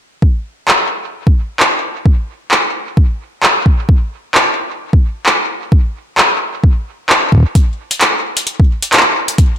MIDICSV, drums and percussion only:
0, 0, Header, 1, 2, 480
1, 0, Start_track
1, 0, Tempo, 458015
1, 235, Time_signature, 4, 2, 24, 8
1, 10049, End_track
2, 0, Start_track
2, 0, Title_t, "Drums"
2, 234, Note_on_c, 9, 36, 109
2, 339, Note_off_c, 9, 36, 0
2, 714, Note_on_c, 9, 39, 107
2, 819, Note_off_c, 9, 39, 0
2, 1329, Note_on_c, 9, 36, 108
2, 1433, Note_off_c, 9, 36, 0
2, 1674, Note_on_c, 9, 39, 105
2, 1778, Note_off_c, 9, 39, 0
2, 2154, Note_on_c, 9, 36, 114
2, 2259, Note_off_c, 9, 36, 0
2, 2634, Note_on_c, 9, 39, 115
2, 2738, Note_off_c, 9, 39, 0
2, 3114, Note_on_c, 9, 36, 102
2, 3219, Note_off_c, 9, 36, 0
2, 3594, Note_on_c, 9, 39, 110
2, 3699, Note_off_c, 9, 39, 0
2, 3835, Note_on_c, 9, 36, 82
2, 3939, Note_off_c, 9, 36, 0
2, 4074, Note_on_c, 9, 36, 112
2, 4179, Note_off_c, 9, 36, 0
2, 4554, Note_on_c, 9, 39, 118
2, 4659, Note_off_c, 9, 39, 0
2, 5169, Note_on_c, 9, 36, 114
2, 5274, Note_off_c, 9, 36, 0
2, 5514, Note_on_c, 9, 39, 115
2, 5619, Note_off_c, 9, 39, 0
2, 5994, Note_on_c, 9, 36, 112
2, 6099, Note_off_c, 9, 36, 0
2, 6473, Note_on_c, 9, 39, 114
2, 6578, Note_off_c, 9, 39, 0
2, 6954, Note_on_c, 9, 36, 103
2, 7059, Note_off_c, 9, 36, 0
2, 7434, Note_on_c, 9, 39, 111
2, 7539, Note_off_c, 9, 39, 0
2, 7674, Note_on_c, 9, 36, 76
2, 7701, Note_off_c, 9, 36, 0
2, 7701, Note_on_c, 9, 36, 63
2, 7728, Note_off_c, 9, 36, 0
2, 7728, Note_on_c, 9, 36, 51
2, 7755, Note_off_c, 9, 36, 0
2, 7755, Note_on_c, 9, 36, 42
2, 7782, Note_off_c, 9, 36, 0
2, 7782, Note_on_c, 9, 36, 35
2, 7887, Note_off_c, 9, 36, 0
2, 7914, Note_on_c, 9, 42, 47
2, 7915, Note_on_c, 9, 36, 112
2, 8019, Note_off_c, 9, 36, 0
2, 8019, Note_off_c, 9, 42, 0
2, 8289, Note_on_c, 9, 42, 59
2, 8394, Note_off_c, 9, 42, 0
2, 8394, Note_on_c, 9, 39, 114
2, 8394, Note_on_c, 9, 42, 49
2, 8499, Note_off_c, 9, 39, 0
2, 8499, Note_off_c, 9, 42, 0
2, 8769, Note_on_c, 9, 42, 60
2, 8873, Note_off_c, 9, 42, 0
2, 8874, Note_on_c, 9, 42, 49
2, 8979, Note_off_c, 9, 42, 0
2, 9009, Note_on_c, 9, 36, 110
2, 9114, Note_off_c, 9, 36, 0
2, 9248, Note_on_c, 9, 42, 61
2, 9353, Note_off_c, 9, 42, 0
2, 9354, Note_on_c, 9, 39, 103
2, 9354, Note_on_c, 9, 42, 46
2, 9399, Note_off_c, 9, 39, 0
2, 9399, Note_on_c, 9, 39, 86
2, 9434, Note_off_c, 9, 39, 0
2, 9434, Note_on_c, 9, 39, 67
2, 9459, Note_off_c, 9, 42, 0
2, 9538, Note_off_c, 9, 39, 0
2, 9728, Note_on_c, 9, 42, 61
2, 9833, Note_off_c, 9, 42, 0
2, 9834, Note_on_c, 9, 36, 106
2, 9834, Note_on_c, 9, 42, 48
2, 9939, Note_off_c, 9, 36, 0
2, 9939, Note_off_c, 9, 42, 0
2, 10049, End_track
0, 0, End_of_file